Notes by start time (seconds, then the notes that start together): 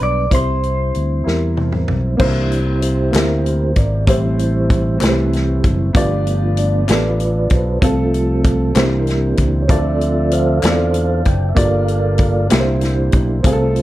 Already playing: G2 G3 B3 D4 G4 B4 D5
0.01 B1 D5
0.31 C2 C3 G3 C4 E4 G4 C5, kick, closed hi-hat
0.35 C5
0.63 closed hi-hat
0.95 D2, closed hi-hat
1.24 E2 E4 G4 A#4, snare
1.57 high tom
1.72 mid tom
1.88 B1, mid tom
2.17 C2 C3 E3 A#3 C4 D4 D#4 E4 G4 C5, kick, crash
2.22 E4 C5
2.52 closed hi-hat
2.82 E4 G4 C5, closed hi-hat
3.11 D2 A#3 C4 E4 G4 A#4, clap, closed hi-hat
3.16 snare
3.46 closed hi-hat
3.76 G#1 D5, kick, closed hi-hat
4.06 A1 A2 E3 G3 A3 C4 E4 G4 C5, kick, closed hi-hat
4.39 closed hi-hat
4.70 kick, closed hi-hat
5.00 C2 A3 C4 E4 G4 B4, snare, clap, closed hi-hat
5.09 C5
5.33 snare, closed hi-hat
5.64 F#1, kick, closed hi-hat
5.93 G1 G2 F3 A3 B3 D4 F4 G4 D5, kick, closed hi-hat
6.27 closed hi-hat
6.57 D5, closed hi-hat
6.87 A1 B3 D4 F4 G4 A4 B4 D5, snare, clap, closed hi-hat
7.20 closed hi-hat
7.50 B1 C5, kick, closed hi-hat
7.81 C2 C3 F3 A3 C4 F4 A4, kick, closed hi-hat
8.14 closed hi-hat
8.44 A4, kick, closed hi-hat
8.74 C2 C3 E3 A#3 C4 D4 E4 G4 A#4 C5, snare, clap, closed hi-hat
9.07 snare, closed hi-hat
9.37 C#2, kick, closed hi-hat
9.62 C#5
9.68 D2 D3 F3 C4 D4 F4 A4 D5 E5, kick, closed hi-hat
10.01 closed hi-hat
10.31 A4 C5 F5, closed hi-hat
10.62 E2 C4 D4 E4 A4 D5, snare, clap, closed hi-hat
10.70 F4
10.94 closed hi-hat
11.25 F#1 G5, kick, closed hi-hat
11.49 E5
11.55 G1 G2 A#3 D4 F4 G4 A4 D5 F5, kick, closed hi-hat
11.59 A#4
11.88 closed hi-hat
12.18 kick, closed hi-hat
12.49 C2 A#2 A#3 C4 D4 E4 G4 C5, snare, clap, closed hi-hat
12.53 A#4
12.60 C5
12.81 snare, closed hi-hat
13.12 B1, kick, closed hi-hat
13.43 C2 C3 A3 C4 F4 G#4 A4 C5, kick, closed hi-hat
13.53 A4
13.76 closed hi-hat